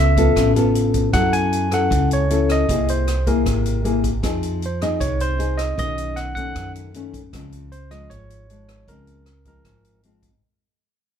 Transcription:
Already playing: C#2 C#3 B3 F4 A4 E5
0.17 B3 F4 A4, kick, closed hi-hat
0.36 A1 C#3, kick, cross-stick, closed hi-hat
0.56 B3 F4 A4, closed hi-hat
0.75 closed hi-hat
0.94 kick, closed hi-hat
1.13 F#2 F#3 C#4 E4 A4 F#5, kick, cross-stick, closed hi-hat
1.33 G#5, closed hi-hat
1.53 closed hi-hat
1.72 C#4 E4 A4 F#5, cross-stick, closed hi-hat
1.90 C#2 C#3, kick, closed hi-hat
2.11 C#5, closed hi-hat
2.30 C#4 E4 A4, closed hi-hat
2.50 D#5, cross-stick, closed hi-hat
2.69 C2 C3 A#3 E4 G#4, kick, closed hi-hat
2.88 C5, closed hi-hat
3.08 cross-stick, closed hi-hat
3.27 A#3 E4 G#4 A#4, kick, closed hi-hat
3.45 G#1 C3, kick, cross-stick, closed hi-hat
3.65 closed hi-hat
3.84 A#3 E4 G#4, closed hi-hat
4.04 kick, closed hi-hat
4.23 F2 F3 C4 D#4 G#4, kick, cross-stick, closed hi-hat
4.43 closed hi-hat
4.62 C5, closed hi-hat
4.82 C4 D#4 G#4 D#5, cross-stick, closed hi-hat
5.00 C2 C3 C#5, kick, closed hi-hat
5.20 C5, closed hi-hat
5.38 C4 D#4 G#4, closed hi-hat
5.58 D#5, cross-stick, closed hi-hat
5.77 B1 B2 D#3 A3 C#4 D#5, kick, closed hi-hat
5.98 closed hi-hat
6.16 F#5, cross-stick, closed hi-hat
6.35 D#3 A3 C#4 F#5, kick, closed hi-hat
6.55 F#2, kick, cross-stick, closed hi-hat
6.75 closed hi-hat
6.94 D#3 A3 C#4, closed hi-hat
7.14 kick, closed hi-hat
7.33 C#2 C#3 F3 G#3 C4, kick, cross-stick, closed hi-hat
7.52 closed hi-hat
7.72 C5, closed hi-hat
7.91 F3 G#3 D#5, cross-stick, closed hi-hat
8.10 G#1 G#2 C#5, kick, closed hi-hat
8.30 closed hi-hat
8.50 F3 G#3, closed hi-hat
8.69 cross-stick, closed hi-hat
8.88 C#2 C#3 F3 G#3 C4 A#4, kick, closed hi-hat
9.07 closed hi-hat
9.26 cross-stick, closed hi-hat
9.45 F3 G#3 C4 A#4, kick, closed hi-hat
9.65 G#1 G#2, kick, cross-stick, closed hi-hat
9.85 closed hi-hat
10.03 F3 G#3 C4, closed hi-hat
10.23 kick, closed hi-hat

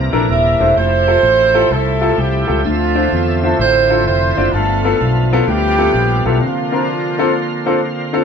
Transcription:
Already playing: C3 E3 A#3 D4 G4 A#4 C5
0.13 A#1 D4 E4 A4 A#4
0.29 D#1 E4 G4 A#4 E5
0.60 E1 D4 E4 A4 C5
0.76 F1 F3 A3 C4 E4 G4 A4 C5
1.07 E4 F4 G4 A4
1.23 A1
1.54 E4 F4 G4 A4
1.71 C2 A3 C4 E4 A4
2.01 E4 F4 G4 A4
2.18 C2 G3 C4 E4 G4
2.47 C#2 E4 F4 G4 A4
2.64 D2 D3 F3 A3 C4 F4 E5
2.95 D4 E4 F4 C5
3.12 E2
3.43 A3 D4 E4 F4 A4 C5
3.59 A1 C4 E4 F4 C5
3.90 D4 E4 F4 A4
4.06 F1 C4 E4 F4 C5
4.37 F#1 D4 E4 F4 D5
4.53 G1 G2 F3 A3 B3 D4 F4 A4
4.85 B3 E4 F4 A4
5.01 B1
5.33 B3 E4 F4 A4
5.47 D2 G3 B3 D4 G4
5.78 B3 E4 F4 A4
5.94 A#1
6.25 B1 G3 B3 E4 F4 G4 A4
6.40 C3 D3 A#3 C4 D4 F4
6.44 F3 F4
6.72 C4 D4 F4 A#4
7.19 C4 D4 F4 A4
7.66 C4 D4 F4 A4
8.13 C4 D4 F4 A4

